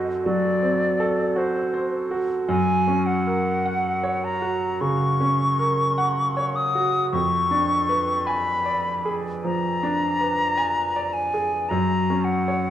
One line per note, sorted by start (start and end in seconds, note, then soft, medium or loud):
0.00 0.22 F#2 soft
0.00 0.62 C4 soft
0.00 1.36 F#4 soft
0.00 1.00 A4 soft
0.00 0.11 C5 soft
0.24 0.85 F#3 soft
0.24 1.39 D5 medium
0.62 1.22 C4 soft
1.00 1.60 A4 soft
1.36 1.96 F#4 soft
1.36 1.93 C5 medium
1.74 2.34 C5 soft
2.11 2.49 F#4 soft
2.48 4.77 F#2 soft
2.48 3.08 G#5 medium
2.87 3.50 C#4 soft
3.07 4.26 F#5 medium
3.27 3.88 A#4 soft
3.66 4.27 F#5 soft
4.04 4.66 C#5 soft
4.24 4.82 A#5 medium
4.42 5.05 F#4 soft
4.81 5.44 C#3 soft
4.81 6.57 C#6 medium
5.20 5.83 C#4 soft
5.59 6.21 A#4 soft
5.98 6.60 F#5 soft
6.37 6.98 C#5 soft
6.56 7.11 D#6 medium
6.75 7.13 F#4 soft
7.12 9.39 F2 soft
7.12 8.28 C#6 medium
7.51 8.12 D4 soft
7.89 8.50 B4 soft
8.26 8.89 G#5 soft
8.26 9.15 B5 medium
8.65 9.28 D5 soft
9.05 9.67 G#4 soft
9.44 10.05 F3 soft
9.44 11.15 A#5 medium
9.83 10.43 D4 soft
10.21 10.80 B4 soft
10.57 11.17 G#5 soft
10.96 11.56 D5 soft
11.13 11.71 G#5 medium
11.34 11.71 G#4 soft
11.69 12.70 F#2 soft
11.69 12.26 A#5 medium
12.10 12.70 C#4 soft
12.24 12.70 F#5 medium
12.48 12.70 C#5 soft